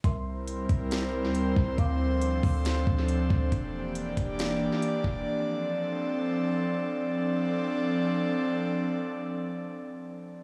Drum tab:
HH |x-xxx-x-|x-xox-x-|x-xxx-x-|--------|
SD |----o---|----o---|----o---|--------|
BD |o--o---o|o--o-o-o|o--o---o|--------|

HH |--------|--------|
SD |--------|--------|
BD |--------|--------|